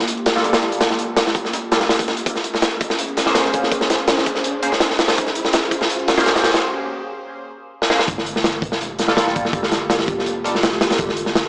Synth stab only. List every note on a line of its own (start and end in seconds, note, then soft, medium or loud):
0.36 1.70 G3 medium
0.36 1.70 A#3 medium
0.36 1.70 F4 medium
0.36 1.70 A4 medium
1.72 1.82 G3 medium
1.72 1.82 A#3 medium
1.72 1.82 F4 medium
1.72 1.82 A4 medium
3.27 4.61 A#3 medium
3.27 4.61 C#4 medium
3.27 4.61 G#4 medium
3.27 4.61 C5 medium
4.63 4.73 A#3 medium
4.63 4.73 C#4 medium
4.63 4.73 G#4 medium
4.63 4.73 C5 medium
6.17 7.51 A#3 medium
6.17 7.51 C#4 medium
6.17 7.51 G#4 medium
6.17 7.51 C5 medium
7.90 8.00 A#3 medium
7.90 8.00 C#4 medium
7.90 8.00 G#4 medium
7.90 8.00 C5 loud
9.08 10.42 G3 medium
9.08 10.42 A#3 medium
9.08 10.42 F4 medium
9.08 10.42 A4 medium
10.44 10.55 G3 medium
10.44 10.55 A#3 medium
10.44 10.55 F4 medium
10.44 10.55 A4 medium